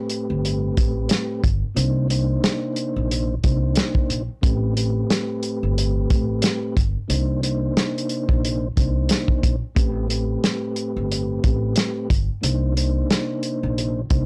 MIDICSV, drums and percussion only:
0, 0, Header, 1, 2, 480
1, 0, Start_track
1, 0, Tempo, 666667
1, 1269, Time_signature, 4, 2, 24, 8
1, 10265, End_track
2, 0, Start_track
2, 0, Title_t, "Drums"
2, 68, Note_on_c, 9, 42, 62
2, 140, Note_off_c, 9, 42, 0
2, 323, Note_on_c, 9, 42, 75
2, 395, Note_off_c, 9, 42, 0
2, 555, Note_on_c, 9, 42, 69
2, 557, Note_on_c, 9, 36, 93
2, 627, Note_off_c, 9, 42, 0
2, 629, Note_off_c, 9, 36, 0
2, 785, Note_on_c, 9, 42, 103
2, 799, Note_on_c, 9, 38, 103
2, 857, Note_off_c, 9, 42, 0
2, 871, Note_off_c, 9, 38, 0
2, 1033, Note_on_c, 9, 36, 87
2, 1034, Note_on_c, 9, 42, 82
2, 1105, Note_off_c, 9, 36, 0
2, 1106, Note_off_c, 9, 42, 0
2, 1272, Note_on_c, 9, 42, 89
2, 1344, Note_off_c, 9, 42, 0
2, 1514, Note_on_c, 9, 42, 81
2, 1586, Note_off_c, 9, 42, 0
2, 1755, Note_on_c, 9, 42, 84
2, 1757, Note_on_c, 9, 38, 124
2, 1827, Note_off_c, 9, 42, 0
2, 1829, Note_off_c, 9, 38, 0
2, 1988, Note_on_c, 9, 42, 64
2, 2060, Note_off_c, 9, 42, 0
2, 2242, Note_on_c, 9, 42, 79
2, 2314, Note_off_c, 9, 42, 0
2, 2474, Note_on_c, 9, 42, 67
2, 2476, Note_on_c, 9, 36, 96
2, 2546, Note_off_c, 9, 42, 0
2, 2548, Note_off_c, 9, 36, 0
2, 2703, Note_on_c, 9, 42, 106
2, 2717, Note_on_c, 9, 38, 105
2, 2775, Note_off_c, 9, 42, 0
2, 2789, Note_off_c, 9, 38, 0
2, 2843, Note_on_c, 9, 36, 84
2, 2915, Note_off_c, 9, 36, 0
2, 2953, Note_on_c, 9, 42, 84
2, 3025, Note_off_c, 9, 42, 0
2, 3190, Note_on_c, 9, 36, 122
2, 3191, Note_on_c, 9, 42, 89
2, 3262, Note_off_c, 9, 36, 0
2, 3263, Note_off_c, 9, 42, 0
2, 3433, Note_on_c, 9, 42, 80
2, 3505, Note_off_c, 9, 42, 0
2, 3674, Note_on_c, 9, 42, 84
2, 3676, Note_on_c, 9, 38, 123
2, 3746, Note_off_c, 9, 42, 0
2, 3748, Note_off_c, 9, 38, 0
2, 3908, Note_on_c, 9, 42, 64
2, 3980, Note_off_c, 9, 42, 0
2, 4162, Note_on_c, 9, 42, 78
2, 4234, Note_off_c, 9, 42, 0
2, 4394, Note_on_c, 9, 42, 71
2, 4396, Note_on_c, 9, 36, 95
2, 4466, Note_off_c, 9, 42, 0
2, 4468, Note_off_c, 9, 36, 0
2, 4623, Note_on_c, 9, 42, 108
2, 4636, Note_on_c, 9, 38, 98
2, 4695, Note_off_c, 9, 42, 0
2, 4708, Note_off_c, 9, 38, 0
2, 4872, Note_on_c, 9, 36, 85
2, 4873, Note_on_c, 9, 42, 85
2, 4944, Note_off_c, 9, 36, 0
2, 4945, Note_off_c, 9, 42, 0
2, 5111, Note_on_c, 9, 42, 93
2, 5183, Note_off_c, 9, 42, 0
2, 5352, Note_on_c, 9, 42, 81
2, 5424, Note_off_c, 9, 42, 0
2, 5594, Note_on_c, 9, 42, 84
2, 5595, Note_on_c, 9, 38, 123
2, 5666, Note_off_c, 9, 42, 0
2, 5667, Note_off_c, 9, 38, 0
2, 5745, Note_on_c, 9, 42, 57
2, 5817, Note_off_c, 9, 42, 0
2, 5828, Note_on_c, 9, 42, 60
2, 5900, Note_off_c, 9, 42, 0
2, 5968, Note_on_c, 9, 36, 85
2, 6040, Note_off_c, 9, 36, 0
2, 6082, Note_on_c, 9, 42, 80
2, 6154, Note_off_c, 9, 42, 0
2, 6315, Note_on_c, 9, 42, 72
2, 6316, Note_on_c, 9, 36, 95
2, 6387, Note_off_c, 9, 42, 0
2, 6388, Note_off_c, 9, 36, 0
2, 6545, Note_on_c, 9, 42, 109
2, 6558, Note_on_c, 9, 38, 100
2, 6617, Note_off_c, 9, 42, 0
2, 6630, Note_off_c, 9, 38, 0
2, 6683, Note_on_c, 9, 36, 83
2, 6755, Note_off_c, 9, 36, 0
2, 6792, Note_on_c, 9, 36, 85
2, 6793, Note_on_c, 9, 42, 84
2, 6864, Note_off_c, 9, 36, 0
2, 6865, Note_off_c, 9, 42, 0
2, 7030, Note_on_c, 9, 36, 120
2, 7031, Note_on_c, 9, 42, 89
2, 7102, Note_off_c, 9, 36, 0
2, 7103, Note_off_c, 9, 42, 0
2, 7273, Note_on_c, 9, 42, 78
2, 7345, Note_off_c, 9, 42, 0
2, 7514, Note_on_c, 9, 42, 86
2, 7515, Note_on_c, 9, 38, 121
2, 7586, Note_off_c, 9, 42, 0
2, 7587, Note_off_c, 9, 38, 0
2, 7748, Note_on_c, 9, 42, 62
2, 7820, Note_off_c, 9, 42, 0
2, 8003, Note_on_c, 9, 42, 75
2, 8075, Note_off_c, 9, 42, 0
2, 8234, Note_on_c, 9, 42, 71
2, 8236, Note_on_c, 9, 36, 99
2, 8306, Note_off_c, 9, 42, 0
2, 8308, Note_off_c, 9, 36, 0
2, 8464, Note_on_c, 9, 42, 106
2, 8478, Note_on_c, 9, 38, 103
2, 8536, Note_off_c, 9, 42, 0
2, 8550, Note_off_c, 9, 38, 0
2, 8712, Note_on_c, 9, 36, 87
2, 8714, Note_on_c, 9, 42, 87
2, 8784, Note_off_c, 9, 36, 0
2, 8786, Note_off_c, 9, 42, 0
2, 8952, Note_on_c, 9, 42, 92
2, 9024, Note_off_c, 9, 42, 0
2, 9194, Note_on_c, 9, 42, 84
2, 9266, Note_off_c, 9, 42, 0
2, 9435, Note_on_c, 9, 42, 81
2, 9436, Note_on_c, 9, 38, 123
2, 9507, Note_off_c, 9, 42, 0
2, 9508, Note_off_c, 9, 38, 0
2, 9668, Note_on_c, 9, 42, 64
2, 9740, Note_off_c, 9, 42, 0
2, 9922, Note_on_c, 9, 42, 76
2, 9994, Note_off_c, 9, 42, 0
2, 10154, Note_on_c, 9, 42, 69
2, 10156, Note_on_c, 9, 36, 96
2, 10226, Note_off_c, 9, 42, 0
2, 10228, Note_off_c, 9, 36, 0
2, 10265, End_track
0, 0, End_of_file